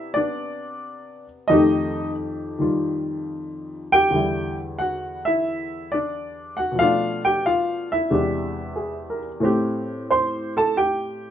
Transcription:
0.00 1.48 C3 medium
0.00 0.14 B3 soft
0.00 0.15 D4 medium
0.00 0.12 E4 medium
0.00 0.11 E5 medium
0.14 1.48 B3 soft
0.14 1.24 D4 medium
0.14 1.23 D5 medium
1.48 4.14 F2 medium
1.48 2.57 D#3 medium
1.48 4.14 A3 medium
1.48 2.11 D#4 medium
1.48 2.10 D#5 medium
1.52 3.92 G4 medium
2.59 4.13 D#3 soft
2.59 4.12 G3 soft
2.59 4.14 F4 soft
3.92 4.55 G4 medium
3.92 4.55 G5 loud
4.10 6.76 E2 soft
4.10 6.77 D3 soft
4.10 6.78 G3 soft
4.15 5.26 E4 medium
4.79 5.22 F#4 medium
4.79 5.21 F#5 medium
5.25 5.88 E4 medium
5.25 5.93 E5 medium
5.92 6.55 D4 medium
5.92 6.54 D5 medium
6.57 6.77 F#4 medium
6.57 6.78 F#5 medium
6.72 8.07 B2 soft
6.72 8.09 F3 soft
6.79 8.11 A3 soft
6.79 8.10 D4 medium
6.79 7.22 F4 medium
6.79 7.21 F5 medium
7.25 7.43 G4 medium
7.25 7.43 G5 medium
7.46 7.88 F4 medium
7.46 7.92 F5 medium
7.92 9.20 E4 medium
7.92 9.19 E5 medium
8.11 9.43 E2 soft
8.11 9.43 C3 soft
8.11 9.43 G#3 soft
8.11 9.43 D4 soft
8.11 9.43 G4 medium
8.76 9.28 G#4 soft
9.10 9.56 A#4 soft
9.40 11.30 A2 medium
9.40 11.30 A3 medium
9.40 11.30 C4 soft
9.45 10.76 G4 medium
10.11 10.52 C5 medium
10.11 10.57 C6 medium
10.57 10.75 A4 medium
10.57 10.75 A5 medium
10.77 11.30 G4 medium
10.77 11.30 G5 medium

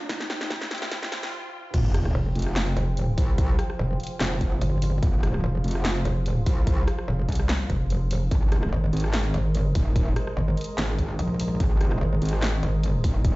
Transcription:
0.00 riser medium
0.09 1.72 C3 medium
0.09 1.72 G3 medium
0.09 1.33 D#4 medium
0.09 1.72 F4 medium
0.09 1.72 C5 medium
0.09 1.72 G5 medium
0.09 kick loud
0.09 snare medium
0.09 closed hi-hat medium
0.20 snare medium
0.30 snare medium
0.30 closed hi-hat soft
0.41 snare medium
0.50 kick loud
0.50 snare loud
0.61 snare medium
0.71 snare loud
0.71 closed hi-hat soft
0.75 closed hi-hat medium
0.78 closed hi-hat medium
0.82 snare medium
0.92 kick medium
0.92 snare loud
0.92 closed hi-hat medium
1.03 snare medium
1.12 snare loud
1.12 closed hi-hat soft
1.23 snare loud
1.74 2.13 F1 loud
1.74 8.27 F3 medium
1.74 8.27 F4 medium
1.74 8.27 G#4 medium
1.74 8.27 C5 medium
1.74 4.99 G5 medium
1.74 kick loud
1.74 closed hi-hat medium
1.74 crash loud
1.74 sub drop medium
1.94 cross-stick medium
1.94 closed hi-hat medium
2.05 cross-stick medium
2.15 2.34 F1 loud
2.35 2.75 F1 loud
2.35 closed hi-hat soft
2.39 closed hi-hat medium
2.42 closed hi-hat medium
2.46 cross-stick medium
2.56 snare loud
2.56 clap medium
2.56 closed hi-hat medium
2.77 3.16 F1 loud
2.77 closed hi-hat medium
2.97 closed hi-hat medium
3.18 3.57 C2 medium
3.18 kick loud
3.18 open hi-hat medium
3.38 kick loud
3.38 closed hi-hat medium
3.59 cross-stick medium
3.59 closed hi-hat medium
3.70 cross-stick medium
3.79 3.98 F1 loud
4.00 closed hi-hat soft
4.04 closed hi-hat medium
4.07 closed hi-hat medium
4.20 4.60 F1 loud
4.20 snare loud
4.20 clap medium
4.20 closed hi-hat medium
4.41 kick medium
4.41 closed hi-hat medium
4.61 5.01 G1 loud
4.61 closed hi-hat medium
4.82 open hi-hat medium
5.03 5.42 F1 loud
5.03 8.28 F5 medium
5.03 kick loud
5.03 closed hi-hat medium
5.23 cross-stick medium
5.23 closed hi-hat soft
5.34 cross-stick medium
5.44 5.63 F1 loud
5.64 6.04 F1 loud
5.64 closed hi-hat soft
5.68 closed hi-hat medium
5.71 closed hi-hat medium
5.75 cross-stick medium
5.85 snare loud
5.85 clap medium
5.85 closed hi-hat medium
6.05 6.45 F1 loud
6.05 closed hi-hat medium
6.26 closed hi-hat medium
6.46 6.86 C2 loud
6.46 kick loud
6.46 open hi-hat medium
6.67 kick loud
6.67 closed hi-hat medium
6.88 cross-stick medium
6.88 closed hi-hat soft
6.99 cross-stick medium
7.08 7.27 F1 loud
7.29 7.68 C2 loud
7.29 kick medium
7.29 closed hi-hat soft
7.32 closed hi-hat medium
7.35 closed hi-hat medium
7.40 cross-stick medium
7.49 snare loud
7.49 clap medium
7.49 closed hi-hat medium
7.70 8.30 F1 loud
7.70 kick medium
7.70 closed hi-hat soft
7.90 closed hi-hat medium
8.11 open hi-hat medium
8.31 8.71 G#1 loud
8.31 13.36 G#3 medium
8.31 13.36 G#4 medium
8.31 13.36 A#4 medium
8.31 13.36 C5 medium
8.31 13.36 D#5 medium
8.31 kick loud
8.31 closed hi-hat medium
8.52 cross-stick medium
8.52 closed hi-hat medium
8.63 cross-stick medium
8.73 8.92 G#1 loud
8.93 9.33 G#1 loud
8.93 closed hi-hat soft
8.97 closed hi-hat medium
9.00 closed hi-hat medium
9.04 cross-stick medium
9.14 snare loud
9.14 clap medium
9.14 closed hi-hat medium
9.34 9.74 G#1 loud
9.34 closed hi-hat soft
9.55 closed hi-hat medium
9.75 10.15 D#1 loud
9.75 kick loud
9.75 open hi-hat medium
9.96 kick loud
9.96 closed hi-hat medium
10.16 cross-stick medium
10.16 closed hi-hat medium
10.27 cross-stick medium
10.37 10.56 G#1 loud
10.57 closed hi-hat soft
10.61 closed hi-hat medium
10.64 closed hi-hat medium
10.78 11.18 G#1 loud
10.78 snare loud
10.78 clap medium
10.78 closed hi-hat medium
10.98 kick medium
10.98 closed hi-hat medium
11.19 11.59 A#1 loud
11.19 closed hi-hat medium
11.40 open hi-hat loud
11.60 12.00 G#1 loud
11.60 kick loud
11.60 closed hi-hat medium
11.81 cross-stick medium
11.81 closed hi-hat medium
11.92 cross-stick medium
12.01 12.20 G#1 loud
12.22 12.61 G#1 loud
12.22 closed hi-hat soft
12.25 closed hi-hat medium
12.29 closed hi-hat medium
12.33 cross-stick medium
12.42 snare loud
12.42 clap medium
12.42 closed hi-hat medium
12.63 13.02 G#1 loud
12.63 closed hi-hat medium
12.83 closed hi-hat medium
13.04 13.36 D#1 loud
13.04 kick loud
13.04 open hi-hat medium
13.25 kick loud
13.25 closed hi-hat medium

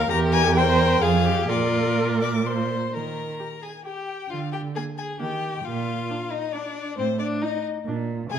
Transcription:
0.00 0.10 D#2 medium
0.00 0.11 A#4 medium
0.10 1.01 E2 loud
0.10 0.59 G4 loud
0.10 0.56 A#4 medium
0.10 0.18 A#5 loud
0.32 0.55 G#5 loud
0.56 1.04 A#4 medium
0.56 1.02 C5 loud
0.56 1.03 G5 loud
1.02 1.49 F2 medium
1.02 1.50 G#4 medium
1.02 1.27 G#4 medium
1.02 1.49 F5 loud
1.26 1.52 G4 medium
1.49 2.71 A#2 medium
1.49 2.21 F4 medium
1.49 2.70 A#4 medium
1.49 2.21 D5 loud
2.22 2.30 D5 medium
2.22 2.48 D6 medium
2.46 2.96 C5 medium
2.46 2.94 C6 medium
2.93 3.32 D#3 soft
2.93 3.62 A#4 medium
2.93 3.65 A#5 medium
3.40 3.48 G4 soft
3.63 3.71 G#4 medium
3.63 3.84 G#5 medium
3.85 4.29 G4 medium
3.85 3.94 G4 soft
3.85 4.32 G5 medium
4.30 4.68 D3 medium
4.30 4.38 F4 medium
4.30 4.52 F5 medium
4.52 4.60 G4 medium
4.52 4.61 G5 medium
4.75 4.84 A#3 soft
4.75 4.83 G#4 medium
4.75 4.84 G#5 medium
4.98 5.20 G#4 medium
4.98 5.06 G#5 medium
5.20 5.58 D#3 medium
5.20 5.28 A#3 soft
5.20 5.65 G4 medium
5.20 5.66 G5 medium
5.65 6.02 A#2 medium
5.65 6.33 F4 medium
5.65 6.32 F5 medium
6.10 6.18 D4 medium
6.31 6.56 D#4 medium
6.31 6.54 D#5 medium
6.52 6.62 D4 soft
6.52 6.98 D4 medium
6.52 6.97 D5 medium
6.97 7.34 A2 medium
6.97 7.06 C4 medium
6.97 7.19 C5 medium
7.19 7.44 D4 medium
7.19 7.27 D5 medium
7.42 7.50 D#4 medium
7.42 7.65 D#4 medium
7.42 7.64 D#5 medium
7.86 8.23 A#2 medium
7.86 7.96 D4 medium
8.30 8.39 C3 medium
8.30 8.39 G#4 loud
8.30 8.39 G#5 loud

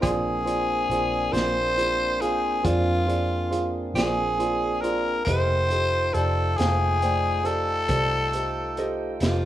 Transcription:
0.01 0.86 A#1 medium
0.01 5.23 A#3 medium
0.01 5.23 C4 medium
0.01 5.23 D4 medium
0.01 0.35 F4 medium
0.01 0.35 G#4 medium
0.01 5.24 G#4 medium
0.01 1.34 G#4 medium
0.01 0.35 C5 medium
0.01 0.35 D5 medium
0.01 kick loud
0.01 closed hi-hat medium
0.45 0.79 F4 medium
0.45 0.79 G#4 soft
0.45 0.79 C5 soft
0.45 0.79 D5 medium
0.45 closed hi-hat medium
0.89 1.30 A#1 medium
0.89 1.23 F4 soft
0.89 1.23 G#4 soft
0.89 1.23 C5 soft
0.89 1.23 D5 medium
0.89 closed hi-hat medium
1.32 2.61 A#1 medium
1.32 1.66 F4 medium
1.32 1.66 G#4 medium
1.32 1.66 C5 soft
1.32 2.23 C5 loud
1.32 1.66 D5 medium
1.32 closed hi-hat medium
1.37 snare medium
1.77 2.10 F4 medium
1.77 2.11 G#4 soft
1.77 2.11 C5 soft
1.77 2.11 D5 medium
1.77 closed hi-hat medium
2.21 2.54 F4 medium
2.21 2.54 G#4 soft
2.21 2.67 G#4 medium
2.21 2.54 C5 medium
2.21 2.54 F5 medium
2.21 closed hi-hat medium
2.63 3.92 F2 medium
2.63 2.97 F4 medium
2.63 3.69 F4 loud
2.63 2.97 G#4 soft
2.63 2.97 C5 soft
2.63 2.97 D5 medium
2.63 kick loud
2.63 closed hi-hat medium
3.07 3.41 F4 soft
3.07 3.41 G#4 soft
3.07 3.41 C5 soft
3.07 3.41 D5 medium
3.07 closed hi-hat medium
3.50 3.84 F4 medium
3.50 3.85 G#4 medium
3.50 3.84 C5 soft
3.50 3.85 F5 medium
3.50 closed hi-hat medium
3.94 5.22 A#1 medium
3.94 4.28 F4 medium
3.94 4.29 G#4 medium
3.94 4.83 G#4 medium
3.94 4.29 C5 soft
3.94 4.29 D5 medium
3.94 closed hi-hat medium
3.98 snare loud
4.39 4.72 F4 medium
4.39 4.73 G#4 medium
4.39 4.72 C5 medium
4.39 4.73 D5 medium
4.39 closed hi-hat medium
4.81 5.16 F4 medium
4.81 5.16 G#4 soft
4.81 5.24 A#4 medium
4.81 5.16 C5 soft
4.81 5.16 D5 medium
4.81 closed hi-hat medium
5.25 6.11 F1 medium
5.25 5.71 A#3 medium
5.25 5.71 E4 medium
5.25 5.71 G4 medium
5.25 5.60 G4 medium
5.25 5.60 A4 medium
5.25 6.15 C5 loud
5.25 5.60 C5 medium
5.25 5.61 D#5 medium
5.25 5.71 F#5 medium
5.25 kick loud
5.25 closed hi-hat medium
5.67 9.45 A3 medium
5.67 9.45 D#4 medium
5.67 9.45 F4 medium
5.67 9.45 G5 medium
5.67 closed hi-hat soft
5.71 6.04 G4 medium
5.71 6.04 A4 soft
5.71 6.04 C5 soft
5.71 6.05 D#5 medium
6.13 6.55 F1 medium
6.13 6.47 G4 soft
6.13 6.47 A4 soft
6.13 6.58 A4 medium
6.13 6.47 C5 soft
6.13 6.48 D5 medium
6.13 closed hi-hat medium
6.57 7.86 F1 medium
6.57 6.92 A3 soft
6.57 7.48 G#4 loud
6.57 6.92 C5 soft
6.57 6.92 F5 medium
6.57 6.92 G5 medium
6.57 snare medium
6.57 closed hi-hat medium
7.02 7.35 A3 soft
7.02 7.36 C5 medium
7.02 7.35 D5 medium
7.02 7.35 G5 medium
7.02 closed hi-hat medium
7.43 7.78 G4 medium
7.43 7.78 A4 soft
7.43 8.94 A4 loud
7.43 7.78 C5 soft
7.43 7.78 D5 medium
7.43 closed hi-hat medium
7.88 9.17 C2 medium
7.88 8.22 G4 soft
7.88 8.22 A4 medium
7.88 8.22 C5 soft
7.88 8.22 D5 medium
7.88 kick loud
7.88 closed hi-hat medium
8.33 8.67 G4 medium
8.33 8.67 A4 soft
8.33 8.67 C5 soft
8.33 8.67 D#5 medium
8.33 closed hi-hat medium
8.77 9.11 G4 medium
8.77 9.11 A4 medium
8.77 9.11 C5 medium
8.77 9.11 D#5 medium
8.77 closed hi-hat medium
9.20 9.45 F1 medium
9.20 9.45 F4 medium
9.20 9.45 G4 medium
9.20 9.45 A4 soft
9.20 9.45 C5 soft
9.20 9.45 D#5 medium
9.20 snare loud
9.20 closed hi-hat medium

